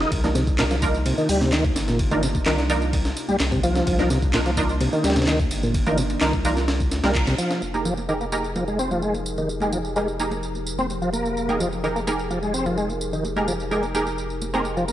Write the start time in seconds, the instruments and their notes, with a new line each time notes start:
Already playing: ambient pad D#4
0.01 tonewheel organ D#4, snare
0.12 sub bass C2, ambient pad C3 A#3 D4 F4, kick, ride, tambourine
0.24 synth stab D4 D#4 F4 A#4, snare, tambourine, high conga, low conga
0.35 tonewheel organ C3, snare, ride, tambourine
0.47 kick, tambourine
0.59 tonewheel organ A#2, synth stab D4 D#4 F4 A#4, snare, clap, ride, tambourine
0.71 tonewheel organ F3, snare, tambourine
0.82 synth stab D4 D#4 F4 A#4, kick, ride, tambourine, high conga, low conga
0.94 tambourine
1.05 tonewheel organ C3, ride, tambourine
1.18 tonewheel organ D#3, tambourine
1.29 sub bass D2, tonewheel organ G3, open hi-hat, tambourine
1.41 tonewheel organ C3, snare, tambourine, high conga
1.52 tonewheel organ D#3, snare, clap, ride, tambourine
1.65 kick, tambourine
1.76 sub bass G1, snare, ride, tambourine
1.88 tonewheel organ A#2, snare, tambourine, muted conga
1.99 kick, ride, tambourine
2.11 tonewheel organ D#3, synth stab D4 D#4 F4 A#4, ride, tambourine, high conga, low conga
2.23 tonewheel organ C3, snare, ride, tambourine
2.35 kick, tambourine, muted conga
2.46 sub bass C2, tonewheel organ D#3, synth stab D4 D#4 F4 A#4, snare, clap, ride, tambourine
2.58 snare, tambourine
2.69 synth stab D4 D#4 F4 A#4, ride, tambourine, high conga, low conga
2.82 tambourine
2.93 kick, ride, tambourine
3.05 snare, tambourine
3.16 ride, tambourine
3.28 sub bass C2, tonewheel organ G3, tambourine, high conga
3.40 sub bass C2, snare, clap, ride, tambourine
3.52 tonewheel organ C3, kick, tambourine
3.63 tonewheel organ F3, ride, tambourine
3.75 snare, tambourine
3.87 sub bass C2, kick, ride, tambourine
3.98 synth stab D4 D#4 F4 A#4, snare, tambourine, high conga, low conga
4.10 tonewheel organ C3, snare, ride, tambourine
4.22 kick, tambourine
4.34 tonewheel organ A#2, synth stab D4 D#4 F4 A#4, snare, clap, ride, tambourine
4.46 tonewheel organ F3, snare, tambourine
4.57 synth stab D4 D#4 F4 A#4, kick, ride, tambourine, high conga, low conga
4.69 tambourine
4.81 tonewheel organ C3, ride, tambourine
4.93 tonewheel organ D#3, tambourine
5.04 sub bass D2, tonewheel organ G3, snare, ride, tambourine
5.10 snare, ride
5.16 tonewheel organ C3, snare, ride, tambourine, high conga
5.22 snare, ride
5.27 tonewheel organ D#3, snare, clap, ride, tambourine
5.39 kick, tambourine
5.51 sub bass G1, ride, tambourine
5.63 tonewheel organ A#2, tambourine, muted conga
5.74 kick, ride, tambourine
5.86 tonewheel organ D#3, synth stab D4 D#4 F4 A#4, ride, tambourine, high conga, low conga
5.97 tonewheel organ C3, ride, tambourine
6.10 ride, tambourine, muted conga
6.21 sub bass C2, tonewheel organ D#3, synth stab D4 D#4 F4 A#4, snare, clap, ride, tambourine
6.33 kick, tambourine
6.45 synth stab D4 D#4 F4 A#4, ride, tambourine, high conga, low conga
6.57 snare, tambourine
6.68 snare, ride, tambourine
6.80 kick, tambourine, muted conga
6.91 sub bass D2, snare, ride, tambourine
7.04 sub bass C2, tonewheel organ G3, synth stab D4 D#4 F4 A#4, snare, ride, tambourine, high conga
7.15 kick, clap, tambourine
7.27 tonewheel organ C3, snare, ride, tambourine
7.38 tonewheel organ F3, ride, tambourine
7.51 snare, tambourine
7.62 sub bass F1, ambient pad F3 D#4 G4 G#4 A#4, tambourine, muted conga
7.74 synth stab D#4 G4 G#4 A#4, tambourine, high conga
7.85 tonewheel organ F3, tambourine, low conga
7.97 tambourine, muted conga
8.09 tonewheel organ D#3, synth stab D#4 G4 G#4 A#4, tambourine
8.20 tonewheel organ A#3, tambourine, muted conga
8.32 synth stab D#4 G4 G#4 A#4, tambourine, high conga
8.44 tambourine
8.56 tonewheel organ F3, tambourine, muted conga
8.68 tonewheel organ G#3, tambourine
8.79 tonewheel organ C4, tambourine, muted conga
8.91 tonewheel organ F3, tambourine, high conga
9.02 tonewheel organ G#3, tambourine
9.14 tambourine, muted conga
9.26 tambourine
9.38 tonewheel organ D#3, tambourine, muted conga
9.49 tambourine
9.60 tonewheel organ G#3, synth stab D#4 G4 G#4 A#4, tambourine, high conga
9.72 tonewheel organ F3, tambourine, muted conga, low conga
9.85 tambourine
9.96 tonewheel organ G#3, synth stab D#4 G4 G#4 A#4, tambourine, muted conga
10.08 tambourine
10.19 synth stab D#4 G4 G#4 A#4, tambourine, high conga
10.31 tambourine, muted conga
10.43 tambourine
10.55 tambourine, muted conga
10.67 tambourine
10.78 tonewheel organ C4, tambourine, high conga
10.90 tambourine, muted conga
11.02 tonewheel organ F3, tambourine
11.13 tonewheel organ A#3, tambourine, muted conga
11.26 tambourine
11.37 tambourine
11.49 synth stab D#4 G4 G#4 A#4, tambourine, muted conga, high conga
11.60 tonewheel organ F3, tambourine, low conga
11.73 tambourine, muted conga
11.84 tonewheel organ D#3, synth stab D#4 G4 G#4 A#4, tambourine
11.96 tonewheel organ A#3, tambourine
12.07 synth stab D#4 G4 G#4 A#4, tambourine, muted conga, high conga
12.19 tambourine
12.31 tonewheel organ F3, tambourine, muted conga
12.43 tonewheel organ G#3, tambourine
12.54 tonewheel organ C4, tambourine
12.66 tonewheel organ F3, tambourine, muted conga, high conga
12.78 tonewheel organ G#3, tambourine
12.89 tambourine, muted conga
13.01 tambourine
13.13 tonewheel organ D#3, tambourine
13.24 tambourine, muted conga
13.36 tonewheel organ G#3, synth stab D#4 G4 G#4 A#4, tambourine, high conga
13.48 tonewheel organ F3, tambourine, muted conga, low conga
13.60 tambourine
13.71 tonewheel organ G#3, synth stab D#4 G4 G#4 A#4, tambourine
13.83 tambourine, muted conga
13.95 synth stab D#4 G4 G#4 A#4, tambourine, high conga
14.07 tambourine, muted conga
14.18 tambourine
14.30 tambourine
14.41 tambourine, muted conga
14.54 tonewheel organ C4, synth stab D#4 G4 G#4 A#4, tambourine, high conga
14.64 tambourine, muted conga
14.77 tonewheel organ F3, tambourine
14.88 tonewheel organ A#3, tambourine